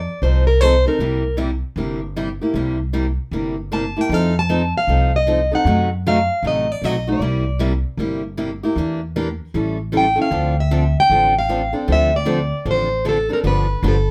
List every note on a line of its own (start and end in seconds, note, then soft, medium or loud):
0.00 0.20 D5 medium
0.22 0.84 C2 medium
0.22 0.44 F3 medium
0.22 0.44 C4 medium
0.22 0.45 D#4 medium
0.22 0.45 A4 medium
0.22 0.45 C5 medium
0.47 0.61 A#4 medium
0.61 0.73 F3 medium
0.61 0.73 C4 medium
0.61 0.73 D#4 medium
0.61 0.73 A4 medium
0.61 0.85 C5 medium
0.86 1.00 C4 soft
0.86 1.00 D#4 soft
0.86 0.99 A4 medium
0.86 1.36 A#4 medium
0.99 1.61 C2 medium
0.99 1.22 C3 medium
0.99 1.22 G3 medium
0.99 1.22 A#3 medium
0.99 1.22 E4 medium
0.99 1.22 G4 medium
1.37 1.49 C3 medium
1.37 1.50 G3 medium
1.37 1.50 A#3 medium
1.37 1.50 E4 medium
1.37 1.50 G4 medium
1.76 2.38 G1 medium
1.76 1.99 C3 medium
1.76 1.99 G3 medium
1.76 1.99 A#3 medium
1.76 1.99 E4 medium
1.76 2.00 G4 medium
2.16 2.28 C3 medium
2.16 2.28 G3 medium
2.16 2.28 A#3 medium
2.16 2.28 E4 medium
2.16 2.28 G4 medium
2.41 2.55 A#3 soft
2.41 2.55 E4 medium
2.41 2.55 G4 soft
2.54 3.16 C2 medium
2.54 2.77 C3 medium
2.54 2.77 G3 medium
2.54 2.77 A#3 medium
2.54 2.77 E4 medium
2.54 2.77 G4 medium
2.93 3.05 C3 medium
2.93 3.05 G3 medium
2.93 3.05 A#3 medium
2.93 3.05 E4 medium
2.93 3.05 G4 medium
3.31 3.94 G1 medium
3.31 3.54 C3 medium
3.31 3.54 G3 medium
3.31 3.55 A#3 medium
3.31 3.55 E4 medium
3.31 3.55 G4 medium
3.72 3.83 C3 medium
3.72 3.83 G3 medium
3.72 3.83 A#3 medium
3.72 3.83 E4 medium
3.72 3.83 G4 medium
3.72 4.01 A5 medium
3.97 4.11 A#3 soft
3.97 4.10 E4 soft
3.97 4.10 G4 medium
4.01 4.14 G5 medium
4.09 4.72 F2 medium
4.09 4.33 F3 medium
4.09 4.33 C4 medium
4.09 4.33 D#4 medium
4.09 4.33 A4 medium
4.14 4.37 F5 medium
4.39 4.73 A5 medium
4.49 4.61 F3 medium
4.49 4.61 C4 medium
4.49 4.61 D#4 medium
4.49 4.61 A4 medium
4.78 5.12 F5 medium
4.87 5.50 C2 medium
4.87 5.10 F3 medium
4.87 5.10 C4 medium
4.87 5.10 D#4 medium
4.87 5.11 A4 medium
5.16 5.54 D#5 medium
5.27 5.38 F3 medium
5.27 5.39 C4 medium
5.27 5.39 D#4 medium
5.27 5.39 A4 medium
5.52 5.66 C4 soft
5.52 5.66 D#4 soft
5.52 5.65 A4 soft
5.52 5.89 F#5 medium
5.65 6.27 F#2 medium
5.65 5.88 C3 medium
5.65 5.88 F#3 medium
5.65 5.88 A3 medium
5.65 5.88 D#4 medium
5.65 5.88 F#4 medium
6.06 6.17 C3 medium
6.06 6.17 F#3 medium
6.06 6.17 A3 medium
6.06 6.18 D#4 medium
6.06 6.18 F#4 medium
6.06 6.46 F5 medium
6.43 6.76 A1 medium
6.43 6.66 C3 medium
6.43 6.66 F#3 soft
6.43 6.66 A3 medium
6.43 6.66 D#4 medium
6.43 6.66 F#4 medium
6.47 6.72 D#5 medium
6.72 6.85 D5 medium
6.82 7.15 B1 medium
6.82 6.95 C3 medium
6.82 6.95 F#3 medium
6.82 6.95 A3 medium
6.82 6.95 D#4 medium
6.82 6.95 F#4 medium
6.82 7.09 D#5 medium
7.07 7.21 A3 soft
7.07 7.21 D#4 soft
7.07 7.21 F#4 medium
7.12 7.59 D5 medium
7.20 7.83 C2 medium
7.20 7.43 C3 medium
7.20 7.43 G3 medium
7.20 7.43 A#3 medium
7.20 7.43 E4 medium
7.20 7.44 G4 medium
7.59 7.71 C3 medium
7.59 7.72 G3 medium
7.59 7.72 A#3 medium
7.59 7.72 E4 medium
7.59 7.72 G4 medium
7.97 8.60 G1 medium
7.97 8.21 C3 medium
7.97 8.21 G3 soft
7.97 8.21 A#3 medium
7.97 8.21 E4 medium
7.97 8.21 G4 medium
8.37 8.49 C3 medium
8.37 8.49 G3 medium
8.37 8.49 A#3 medium
8.37 8.49 E4 medium
8.37 8.50 G4 medium
8.63 8.77 A#3 soft
8.63 8.77 E4 soft
8.63 8.77 G4 medium
8.76 9.38 E2 medium
8.76 8.99 E3 medium
8.76 8.99 A#3 medium
8.76 8.99 D4 medium
8.76 9.00 G4 medium
9.16 9.27 E3 medium
9.16 9.27 A#3 medium
9.16 9.27 D4 medium
9.16 9.28 G4 medium
9.54 10.17 A1 medium
9.54 9.76 E3 medium
9.54 9.76 G3 medium
9.54 9.77 C#4 medium
9.54 9.77 E4 medium
9.54 9.77 A4 medium
9.92 10.04 E3 medium
9.92 10.05 G3 medium
9.92 10.05 C#4 medium
9.92 10.05 E4 medium
9.92 10.05 A4 medium
9.97 10.18 G5 medium
10.16 10.31 C#4 soft
10.16 10.31 E4 soft
10.16 10.31 A4 medium
10.22 10.56 F5 medium
10.31 10.94 D2 medium
10.31 10.54 D3 medium
10.31 10.54 F3 medium
10.31 10.54 C4 medium
10.31 10.54 D4 medium
10.31 10.54 A4 medium
10.60 10.99 E5 medium
10.71 10.83 D3 medium
10.71 10.83 F3 medium
10.71 10.83 C4 medium
10.71 10.83 D4 medium
10.71 10.83 A4 medium
11.00 11.34 G5 medium
11.10 11.72 A1 medium
11.10 11.33 D3 medium
11.10 11.33 F3 medium
11.10 11.33 C4 medium
11.10 11.33 D4 medium
11.10 11.33 A4 medium
11.39 11.73 F5 medium
11.49 11.61 D3 medium
11.49 11.61 F3 medium
11.49 11.61 C4 medium
11.49 11.61 D4 medium
11.49 11.61 A4 medium
11.73 11.87 C4 soft
11.73 11.87 D4 medium
11.73 11.87 A4 medium
11.88 12.50 D2 medium
11.88 12.10 D3 medium
11.88 12.10 F3 medium
11.88 12.10 C4 medium
11.88 12.10 D4 medium
11.88 12.10 A4 medium
11.92 12.16 E5 medium
12.16 12.64 D5 medium
12.25 12.38 D3 medium
12.25 12.38 F3 loud
12.25 12.38 C4 medium
12.25 12.38 D4 loud
12.25 12.38 A4 medium
12.65 13.28 A1 medium
12.65 12.88 D3 medium
12.65 12.88 F3 medium
12.65 12.88 C4 medium
12.65 12.88 D4 medium
12.65 12.88 A4 medium
12.71 13.05 C5 medium
13.05 13.16 D3 medium
13.05 13.16 F3 medium
13.05 13.17 C4 medium
13.05 13.17 D4 medium
13.05 13.17 A4 medium
13.09 13.32 A4 medium
13.29 13.44 C4 soft
13.29 13.43 D4 soft
13.29 13.43 A4 medium
13.33 13.38 A#4 medium
13.44 13.75 G1 medium
13.44 13.66 D3 medium
13.44 13.66 F3 medium
13.44 13.66 B3 medium
13.44 13.66 D4 medium
13.44 13.66 G4 medium
13.44 13.85 B4 medium
13.83 14.11 G1 medium
13.83 13.95 D3 medium
13.83 13.95 F3 medium
13.83 13.95 B3 medium
13.83 13.95 D4 medium
13.83 13.95 G4 medium
13.88 14.11 A4 medium